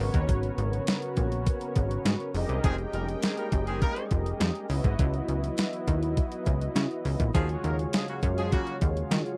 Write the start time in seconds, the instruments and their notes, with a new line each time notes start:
Already playing: analog synth pad C#3
0.00 analog synth bass G#1, analog synth pad B3 C#4 F#4, analog polysynth F#4 A#4 B4 C#5
0.14 analog synth bass D#2, kick, closed hi-hat
0.29 analog synth bass G#1, kick, closed hi-hat
0.43 closed hi-hat
0.58 analog synth bass G#1, closed hi-hat
0.73 closed hi-hat
0.87 snare, closed hi-hat
1.02 closed hi-hat
1.17 analog synth bass A#1, kick, closed hi-hat
1.32 closed hi-hat
1.46 kick, closed hi-hat
1.61 closed hi-hat
1.76 analog synth bass G#1, kick, closed hi-hat
1.91 closed hi-hat
2.05 analog synth bass G#2, snare, closed hi-hat
2.20 closed hi-hat
2.34 analog synth bass F1, analog synth pad G#3 G5, analog polysynth G4 G#4 A#4 D#5, open hi-hat
2.49 analog synth bass C2, closed hi-hat
2.64 analog synth bass F1, horn section D#3 G#3 C4 G#4, kick, closed hi-hat
2.78 closed hi-hat
2.93 analog synth bass F1, horn section G3 A#3 D#4 A#4, closed hi-hat
3.09 closed hi-hat
3.22 horn section D#3 G#3 C4 G#4, snare, closed hi-hat
3.37 horn section G3 A#3 D#4 A#4, closed hi-hat
3.52 analog synth bass F#1, kick, closed hi-hat
3.67 horn section D#3 G#3 C4 G#4, closed hi-hat
3.81 horn section G3 A#3 D#4 A#4, kick, closed hi-hat
3.96 closed hi-hat
4.11 analog synth bass F1, kick, closed hi-hat
4.26 closed hi-hat
4.40 analog synth bass F2, snare, closed hi-hat
4.55 closed hi-hat
4.69 analog synth bass C#2, analog synth pad F#3 B3 E4, analog polysynth E4 F#4 B4 D#5, open hi-hat
4.84 analog synth bass G#1, kick, closed hi-hat
4.99 analog synth bass C#2, kick, closed hi-hat
5.14 closed hi-hat
5.29 analog synth bass C#2, closed hi-hat
5.44 closed hi-hat
5.58 snare, closed hi-hat
5.73 closed hi-hat
5.87 analog synth bass D#2, kick, closed hi-hat
6.03 closed hi-hat
6.17 kick, closed hi-hat
6.32 closed hi-hat
6.46 analog synth bass C#2, kick, closed hi-hat
6.61 closed hi-hat
6.76 analog synth bass C#3, snare, closed hi-hat
6.91 closed hi-hat
7.05 analog synth bass C#2, open hi-hat
7.20 analog synth bass A#1, kick, closed hi-hat
7.34 analog synth bass D#2, analog synth pad C#3 F#3 G#3 F5, horn section F3 G#3 C#4 G#4, analog polysynth F4 F#4 G#4 C#5, kick, closed hi-hat
7.49 closed hi-hat
7.64 analog synth bass D#2, horn section F#3 A#3 F4 A#4, closed hi-hat
7.79 closed hi-hat
7.93 horn section F3 G#3 C#4 G#4, snare, closed hi-hat
8.08 horn section C#3 F#3 A#3 F#4, closed hi-hat
8.23 analog synth bass F#2, kick, closed hi-hat
8.37 horn section F3 G#3 C#4 G#4, closed hi-hat
8.52 horn section C#3 F#3 A#3 F#4, kick, closed hi-hat
8.67 closed hi-hat
8.81 analog synth bass D#2, kick, closed hi-hat
8.97 closed hi-hat
9.11 analog synth bass D#3, snare, closed hi-hat
9.26 closed hi-hat